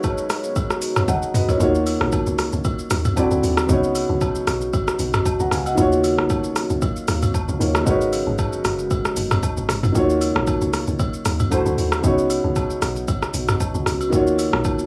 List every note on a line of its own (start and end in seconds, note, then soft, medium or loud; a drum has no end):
0.00 1.55 G#3 medium
0.00 1.58 B3 medium
0.00 1.56 D#4 medium
0.00 1.56 F#4 medium
0.00 1.58 F#4 medium
0.00 1.58 G#4 medium
0.00 1.06 A#4 medium
0.00 1.06 B4 medium
0.00 1.07 C#5 medium
0.00 1.56 C#5 medium
0.00 1.58 A#5 medium
0.00 kick loud
0.00 high agogo medium
0.00 low woodblock medium
0.00 shaker medium
0.18 shaker medium
0.30 cross-stick medium
0.30 open hi-hat soft
0.30 shaker medium
0.44 shaker medium
0.56 kick loud
0.56 high agogo medium
0.56 shaker medium
0.70 cross-stick medium
0.70 shaker medium
0.82 open hi-hat medium
0.82 shaker loud
0.96 cross-stick medium
0.96 mid tom medium
0.96 high agogo medium
0.96 shaker medium
1.08 1.33 D#5 medium
1.08 1.33 F#5 medium
1.08 kick medium
1.08 high tom medium
1.08 low woodblock medium
1.08 shaker medium
1.22 shaker medium
1.34 1.48 B4 medium
1.34 1.48 D#5 medium
1.34 mid tom medium
1.34 open hi-hat soft
1.34 shaker medium
1.49 1.74 A#4 medium
1.49 1.62 C#5 medium
1.49 floor tom medium
1.49 high agogo medium
1.49 shaker medium
1.57 1.96 D#2 loud
1.57 3.15 C#3 medium
1.57 3.12 D#3 medium
1.57 3.67 F#3 medium
1.57 3.13 A#3 medium
1.57 3.14 F4 medium
1.57 3.15 F5 medium
1.57 kick loud
1.57 shaker medium
1.62 3.15 F#4 medium
1.62 3.15 C#5 medium
1.75 shaker medium
1.86 open hi-hat medium
1.86 high agogo medium
1.86 shaker medium
2.01 2.24 A#1 medium
2.01 cross-stick medium
2.12 kick medium
2.12 high agogo medium
2.12 low woodblock medium
2.12 shaker medium
2.27 2.50 C#2 medium
2.27 shaker medium
2.38 cross-stick medium
2.38 open hi-hat soft
2.38 shaker medium
2.53 2.76 C#2 medium
2.53 shaker medium
2.64 kick loud
2.64 high agogo medium
2.64 shaker medium
2.79 shaker soft
2.90 3.14 D#2 loud
2.90 cross-stick medium
2.90 open hi-hat medium
2.90 shaker loud
3.05 mid tom medium
3.05 high agogo medium
3.05 shaker medium
3.16 3.68 D3 medium
3.16 3.69 C4 medium
3.16 3.69 E4 medium
3.16 3.69 F#4 medium
3.16 3.70 D5 medium
3.16 kick medium
3.16 low woodblock medium
3.16 shaker medium
3.31 3.42 D2 loud
3.31 shaker medium
3.43 3.66 D#2 medium
3.43 open hi-hat soft
3.43 shaker medium
3.57 cross-stick loud
3.57 high agogo medium
3.57 shaker medium
3.66 4.05 C#2 loud
3.66 5.72 C#3 medium
3.66 11.48 C#3 medium
3.66 5.73 B3 medium
3.66 5.76 B3 medium
3.66 5.74 D#4 medium
3.66 5.76 F#4 medium
3.66 kick loud
3.66 shaker medium
3.71 5.75 F#4 medium
3.71 5.75 C#5 medium
3.84 shaker soft
3.95 open hi-hat medium
3.95 high agogo medium
3.95 shaker medium
4.10 4.43 C#2 loud
4.21 kick medium
4.21 high agogo medium
4.21 low woodblock medium
4.21 shaker medium
4.35 shaker medium
4.47 4.94 B1 medium
4.47 cross-stick medium
4.47 open hi-hat soft
4.47 shaker medium
4.61 shaker medium
4.73 kick loud
4.73 high agogo medium
4.73 shaker medium
4.88 cross-stick medium
4.88 shaker medium
4.99 5.23 B1 medium
4.99 open hi-hat medium
4.99 shaker loud
5.14 cross-stick medium
5.14 mid tom medium
5.14 high agogo medium
5.14 shaker medium
5.26 kick medium
5.26 low woodblock medium
5.26 shaker medium
5.40 5.50 C#2 loud
5.40 5.52 F#5 medium
5.40 5.51 A#5 medium
5.40 shaker medium
5.51 5.75 C#2 medium
5.51 5.66 F5 medium
5.51 5.65 G#5 medium
5.51 cross-stick medium
5.51 open hi-hat soft
5.51 shaker medium
5.66 5.91 D#5 medium
5.66 5.91 F#5 medium
5.66 high agogo medium
5.66 shaker medium
5.75 6.20 D#2 loud
5.75 7.55 D#3 medium
5.75 7.84 F#3 medium
5.75 7.56 A#3 medium
5.75 7.57 F4 medium
5.75 7.84 F5 medium
5.75 kick loud
5.75 shaker medium
5.80 7.58 F#4 medium
5.80 7.58 C#5 medium
5.92 shaker medium
6.04 open hi-hat medium
6.04 high agogo medium
6.04 shaker medium
6.18 6.46 A#1 medium
6.18 cross-stick medium
6.29 kick loud
6.29 high agogo medium
6.29 low woodblock medium
6.29 shaker medium
6.44 6.67 C#2 medium
6.44 shaker medium
6.56 cross-stick medium
6.56 open hi-hat soft
6.56 shaker medium
6.70 6.94 C#2 medium
6.70 shaker medium
6.82 kick loud
6.82 high agogo medium
6.82 shaker medium
6.96 shaker soft
7.08 7.31 D#2 loud
7.08 cross-stick medium
7.08 open hi-hat medium
7.08 shaker loud
7.22 mid tom medium
7.22 high agogo medium
7.22 shaker medium
7.34 kick medium
7.34 low woodblock medium
7.34 shaker medium
7.49 7.59 C#2 loud
7.49 shaker medium
7.59 7.84 D#2 loud
7.59 7.86 D#3 medium
7.59 7.86 A#3 medium
7.59 7.87 F4 medium
7.59 7.85 F#4 medium
7.59 7.87 C#5 medium
7.59 open hi-hat soft
7.59 shaker medium
7.75 cross-stick loud
7.75 high agogo medium
7.75 shaker medium
7.84 8.22 G#1 loud
7.84 9.90 G#3 medium
7.84 9.93 G#3 medium
7.84 9.93 B3 medium
7.84 9.90 D#4 medium
7.84 9.91 F#4 medium
7.84 9.93 F#4 medium
7.84 9.92 A#4 medium
7.84 kick loud
7.84 shaker medium
7.89 9.92 B4 medium
7.89 9.93 C#5 medium
8.01 shaker medium
8.13 open hi-hat medium
8.13 high agogo medium
8.13 shaker medium
8.27 8.60 G#1 loud
8.38 kick loud
8.38 high agogo medium
8.38 low woodblock medium
8.38 shaker medium
8.53 shaker medium
8.65 9.11 F#1 medium
8.65 cross-stick medium
8.65 open hi-hat soft
8.65 shaker medium
8.79 shaker medium
8.90 kick loud
8.90 high agogo medium
8.90 shaker medium
9.05 cross-stick medium
9.05 shaker soft
9.16 9.40 F#1 medium
9.16 open hi-hat medium
9.16 shaker loud
9.31 cross-stick medium
9.31 mid tom medium
9.31 high agogo medium
9.31 shaker medium
9.43 kick medium
9.43 low woodblock medium
9.43 shaker medium
9.57 9.68 G#1 medium
9.57 shaker medium
9.69 9.92 G#1 loud
9.69 cross-stick loud
9.69 open hi-hat soft
9.69 shaker medium
9.83 mid tom medium
9.83 high agogo medium
9.83 shaker medium
9.92 10.31 D#2 loud
9.92 11.47 D#3 medium
9.92 12.02 F#3 medium
9.92 11.48 A#3 medium
9.92 11.49 F4 medium
9.92 11.50 F5 medium
9.92 kick loud
9.92 shaker medium
9.97 11.49 F#4 medium
9.97 11.50 C#5 medium
10.10 shaker medium
10.21 open hi-hat medium
10.21 high agogo medium
10.21 shaker medium
10.36 10.59 A#1 medium
10.36 cross-stick loud
10.47 kick medium
10.47 high agogo medium
10.47 low woodblock medium
10.47 shaker medium
10.61 10.85 C#2 medium
10.61 shaker medium
10.73 cross-stick medium
10.73 open hi-hat soft
10.73 shaker medium
10.87 11.11 C#2 medium
10.87 shaker medium
10.99 kick loud
10.99 high agogo medium
10.99 shaker medium
11.14 shaker medium
11.25 11.49 D#2 loud
11.25 cross-stick medium
11.25 open hi-hat medium
11.25 shaker loud
11.40 mid tom medium
11.40 high agogo medium
11.40 shaker medium
11.50 12.03 D3 medium
11.50 12.04 A3 medium
11.50 12.04 E4 medium
11.50 12.04 F#4 medium
11.50 12.05 C5 medium
11.50 kick medium
11.50 low woodblock medium
11.50 shaker medium
11.66 11.76 D2 loud
11.66 shaker medium
11.78 12.01 D#2 medium
11.78 open hi-hat soft
11.78 shaker medium
11.92 cross-stick loud
11.92 high agogo medium
11.92 shaker medium
12.01 12.40 C#2 loud
12.01 14.07 C#3 medium
12.01 14.10 C#3 medium
12.01 14.08 B3 medium
12.01 14.10 B3 medium
12.01 14.09 D#4 medium
12.01 14.10 F#4 medium
12.01 kick loud
12.01 shaker medium
12.06 14.09 F#4 medium
12.06 14.10 C#5 medium
12.18 shaker medium
12.30 open hi-hat medium
12.30 high agogo medium
12.30 shaker medium
12.44 12.78 C#2 loud
12.56 kick medium
12.56 high agogo medium
12.56 low woodblock medium
12.56 shaker medium
12.70 shaker medium
12.82 13.28 B1 medium
12.82 cross-stick medium
12.82 open hi-hat soft
12.82 shaker medium
12.96 shaker medium
13.08 kick loud
13.08 high agogo medium
13.08 shaker medium
13.22 cross-stick medium
13.22 shaker soft
13.34 13.57 B1 medium
13.34 open hi-hat medium
13.34 shaker loud
13.48 cross-stick medium
13.48 mid tom medium
13.48 high agogo medium
13.48 shaker medium
13.60 kick medium
13.60 low woodblock medium
13.60 shaker medium
13.75 13.85 C#2 medium
13.75 shaker medium
13.86 14.14 C#2 medium
13.86 cross-stick medium
13.86 open hi-hat soft
13.86 shaker medium
14.01 high agogo medium
14.01 shaker medium
14.10 14.48 D#2 loud
14.10 14.86 C#3 medium
14.10 14.86 D#3 medium
14.10 14.86 F#3 medium
14.10 14.86 A#3 medium
14.10 14.86 F4 medium
14.10 14.86 F5 medium
14.10 kick loud
14.10 shaker medium
14.14 14.86 F#4 medium
14.14 14.86 C#5 medium
14.27 shaker medium
14.39 open hi-hat medium
14.39 high agogo medium
14.39 shaker medium
14.53 14.81 A#1 loud
14.53 cross-stick loud
14.64 kick medium
14.64 high agogo medium
14.64 low woodblock medium
14.64 shaker medium
14.79 14.86 C#2 medium
14.79 shaker medium